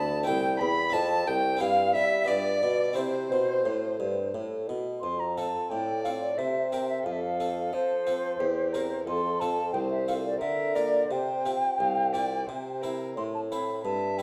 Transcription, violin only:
Already playing: A5
0.26 G5
0.60 B5
0.93 A5
1.27 G5
1.61 F5
1.96 E5
2.27 D5
2.96 C5
5.71 D5
6.38 C5
7.06 A4
8.40 G4
8.73 A#4
9.07 A4
9.74 C5
10.41 A#4
11.10 C5
11.79 F5
12.13 D5
12.47 C5
12.82 A#4
13.85 E5

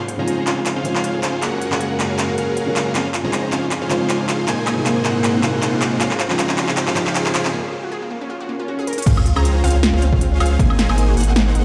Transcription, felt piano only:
0.17 C#3 F3 G#3 C4
0.21 D#4
0.83 C#3 F3 G#3 D#4 C5
1.70 C#3 F#3 G#3 A#3 F5
2.66 C#3 F#3 G#3 A#3 F#4
3.23 C#3 F3 G#3 C4
3.27 D#4
3.88 C#3 F3 G#3 D#4 C5
4.76 C3 F#3 G#3 A#3
4.80 D#4
5.41 C3 F#3 G#3 A#3 D#4
6.28 C#3 F3 G#3 C4
6.32 D#4
6.94 C#3 F3 G#3 D#4 C5

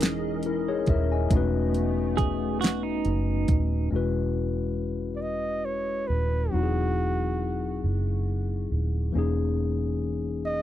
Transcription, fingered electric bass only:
Already playing: E1
0.88 D#1
1.31 E1
3.06 F#1
3.49 D#1
3.92 E1
6.10 D#1
6.54 E1
7.84 F#1
8.72 D#1
9.16 E1

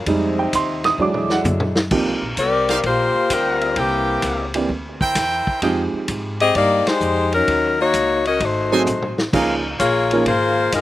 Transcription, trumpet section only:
2.69 D#4 G4 C5 F5
3.30 D#4 G4 C5 G5
3.76 E4 A#4 C5 G5
5.00 E4 A#4 C5 G5
5.62 F4 G#4 D#5 G5
8.72 F#4 A4 C5 G#5
9.34 D#4 A#4 C#5 F5

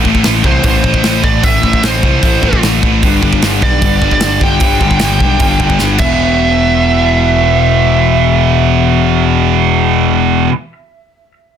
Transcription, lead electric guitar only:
0.46 C5
0.66 C5
1.24 D5
1.44 E5
1.84 C5
3.63 D5
4.13 D5
4.43 G5
5.99 E5

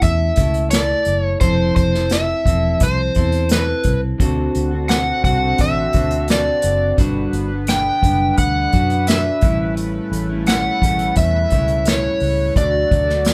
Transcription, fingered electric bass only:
0.02 E2
0.38 C#2
1.06 F#1
1.41 F1
1.77 F1
2.46 E1
2.81 C2
3.16 E2
3.85 C2
4.20 D2
4.56 D2
5.24 C2
5.59 A1
5.95 D2
6.64 F#1
6.98 G1
7.33 G1
8.03 F#1
8.38 D2
8.74 F#2
9.43 A1
10.12 A1
10.82 A1
11.17 E2
11.52 C#2
12.21 C#2
12.56 D2
12.92 D2

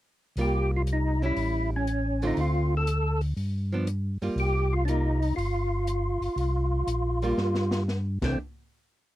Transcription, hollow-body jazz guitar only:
0.38 G3 A#3 F4
1.22 G3 C#4 E4
2.22 D3 A3 C4 F4
3.72 F3 B3 D4
4.22 G3 A#3 F4
4.88 G3 A#3 F4
7.23 G3 A#3 F4
8.23 E3 A3 D4

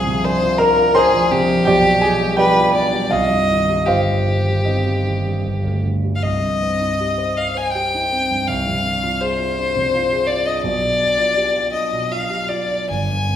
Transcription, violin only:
Already playing: G#4
0.24 C5
0.59 A#4
0.96 G#4
1.31 G4
2.39 B4
2.75 D5
3.11 D#5
3.86 G4
6.16 F5
6.23 D#5
7.37 F5
7.57 G#5
7.73 G5
8.47 F5
9.20 C5
10.27 D5
10.46 D#5
10.62 D5
11.73 D#5
12.12 F5
12.49 D5
12.91 G#5

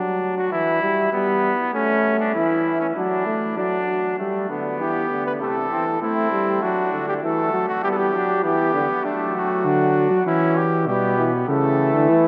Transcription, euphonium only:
Already playing: F#3
0.52 E3
0.82 G3
1.12 G3
1.74 A3
2.35 E3
2.96 F#3
3.26 A3
3.58 F#3
4.19 G3
4.49 D3
4.80 E3
5.10 D3
5.41 C3
5.71 E3
6.02 A3
6.32 G3
6.62 F#3
6.93 D3
7.23 E3
7.53 F#3
7.84 G3
8.14 F#3
8.44 E3
8.74 D3
9.05 F#3
10.88 G3
11.18 E3
11.48 E3

